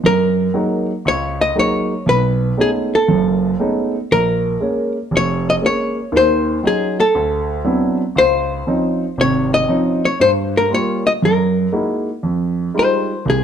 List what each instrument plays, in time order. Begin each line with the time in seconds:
0.04 grand piano F#2, hollow-body jazz guitar A#4
0.54 grand piano F#3 G#3 A#3 D#4
1.05 grand piano C#2, hollow-body jazz guitar C#5
1.41 hollow-body jazz guitar D#5
1.55 grand piano F#3 G#3 A#3 D#4, hollow-body jazz guitar C#5
2.06 grand piano B1, hollow-body jazz guitar B4
2.57 grand piano G#3 A3 B3 C#4 D#4, hollow-body jazz guitar G#4
2.95 hollow-body jazz guitar A4
3.08 grand piano F#1 F#2
3.59 grand piano G#3 A3 B3 C#4 D#4
4.11 grand piano A#1, hollow-body jazz guitar A#4
4.60 grand piano G#3 A#3 C#4
5.11 grand piano F1
5.17 hollow-body jazz guitar C#5
5.50 hollow-body jazz guitar D#5
5.62 grand piano G#3 A#3 C#4
5.66 hollow-body jazz guitar C#5
6.12 grand piano D#2 D#3
6.17 hollow-body jazz guitar C5
6.63 grand piano F#3 C#4 D#4, hollow-body jazz guitar G#4
7.00 hollow-body jazz guitar A4
7.15 grand piano D2
7.64 grand piano F#3 B3 C4 D4 E4
8.16 grand piano C#2, hollow-body jazz guitar C5
8.67 grand piano F3 C4 C#4 D#4
9.18 grand piano G#1 C3, hollow-body jazz guitar C#5
9.54 hollow-body jazz guitar D#5
9.68 grand piano F3 C4 C#4 D#4
10.05 hollow-body jazz guitar C#5
10.20 grand piano G2, hollow-body jazz guitar C5
10.57 hollow-body jazz guitar A#4
10.70 grand piano G3 A#3 F4
10.74 hollow-body jazz guitar C#5
11.07 hollow-body jazz guitar D#5
11.22 grand piano F#2, hollow-body jazz guitar A#4
11.72 grand piano G#3 A#3 D#4 E4 F#4
12.23 grand piano F2
12.74 grand piano G3 G#3 D#4 F4
12.79 hollow-body jazz guitar C5
13.25 grand piano C2
13.30 hollow-body jazz guitar G#4